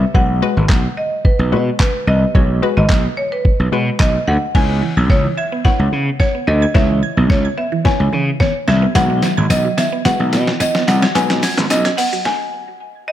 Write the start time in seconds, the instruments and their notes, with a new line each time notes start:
Already playing: marimba E5
0.14 slap bass B1, synth pluck G#3 F#4 B4, marimba F#5, kick
0.42 synth pluck G#3 F#4 B4
0.57 slap bass G#1
0.69 slap bass B1, kick, snare, clap
0.97 marimba D#5
1.25 marimba B4, kick
1.39 slap bass B1
1.52 slap bass B2, synth pluck G#3 F#4 B4
1.79 marimba B4, kick, snare, clap
2.07 slap bass C2, marimba D#5
2.35 slap bass B1, synth pluck G#3 F#4 C#5, kick
2.62 synth pluck G#3 F#4 B4
2.77 slap bass G#1, marimba D#5
2.89 slap bass B1, kick, snare, clap
3.17 marimba C#5
3.32 marimba B4
3.45 kick
3.60 slap bass B1
3.72 slap bass B2, synth pluck G#3 F#4 B4
4.00 slap bass B1, marimba D#5, kick, snare, clap
4.27 slap bass D2, marimba F#5
4.55 slap bass C#2, synth pluck B3 E4 C#5, marimba G#5, synth arpeggio sound G#6, kick, snare, crash
4.69 synth arpeggio sound B3
4.82 synth arpeggio sound E3
4.97 slap bass B1, synth arpeggio sound G#6
5.10 slap bass C#2, synth arpeggio sound B3, marimba C#5, kick, snare
5.25 synth arpeggio sound E3
5.37 marimba E5, synth arpeggio sound G#6
5.52 synth arpeggio sound B3
5.65 synth pluck B3 E4 C#5, marimba F#5, kick, snare
5.79 slap bass C#2
5.92 slap bass C#3
6.20 marimba C#5, synth arpeggio sound G#6, kick, snare
6.35 synth arpeggio sound B3
6.47 slap bass D2, marimba D#5
6.62 synth arpeggio sound G#6
6.74 slap bass C#2, synth pluck B3 E4 C#5, marimba E5, kick, snare
6.90 synth arpeggio sound E3
7.03 synth arpeggio sound G#6
7.17 slap bass B1, synth arpeggio sound B3
7.30 marimba C#5, kick, snare
7.45 synth arpeggio sound G#6
7.58 synth arpeggio sound B3, marimba E5
7.72 synth arpeggio sound E3
7.85 synth pluck B3 E4 C#5, marimba G#5, kick, snare
8.00 slap bass C#2
8.13 slap bass C#3, synth arpeggio sound E3
8.40 synth arpeggio sound B3, marimba C#5, kick, snare
8.68 slap bass C2, marimba E5, synth arpeggio sound G#6, snare
8.82 synth arpeggio sound B3
8.95 slap bass B1, synth pluck G#3 F#4 B4, marimba F#5, synth arpeggio sound G#6, kick, snare, closed hi-hat, tambourine
9.10 synth arpeggio sound B3
9.22 synth arpeggio sound F#3, snare, closed hi-hat, tambourine
9.37 slap bass G#1, synth arpeggio sound G#6
9.50 slap bass B1, synth arpeggio sound B3, marimba D#5, kick, snare, closed hi-hat, tambourine
9.65 synth arpeggio sound F#3
9.78 marimba E5, synth arpeggio sound G#6, snare, closed hi-hat, tambourine
9.92 synth arpeggio sound B3
10.05 synth pluck G#3 F#4 B4, marimba F#5, kick, snare, closed hi-hat, tambourine
10.20 slap bass B1
10.33 slap bass B2, snare, closed hi-hat, tambourine
10.47 snare
10.60 marimba D#5, synth arpeggio sound G#6, kick, snare, closed hi-hat, tambourine
10.75 synth arpeggio sound B3, snare
10.88 slap bass C2, marimba F#5, snare, closed hi-hat, tambourine
11.02 synth arpeggio sound G#6, snare
11.15 slap bass B1, synth pluck G#3 F#4 B4, marimba G#5, kick, snare, closed hi-hat, tambourine, shaker
11.30 synth arpeggio sound F#3, snare, shaker
11.43 synth arpeggio sound G#6, snare, open hi-hat, tambourine, shaker
11.57 slap bass G#1, synth arpeggio sound B3, snare, shaker
11.70 slap bass B1, marimba D#5, snare, closed hi-hat, tambourine, shaker
11.85 synth arpeggio sound G#6, snare, shaker
11.97 synth arpeggio sound B3, marimba F#5, open hi-hat, tambourine, shaker
12.12 synth arpeggio sound F#3, shaker
12.25 marimba G#5, kick, snare
13.08 marimba D#5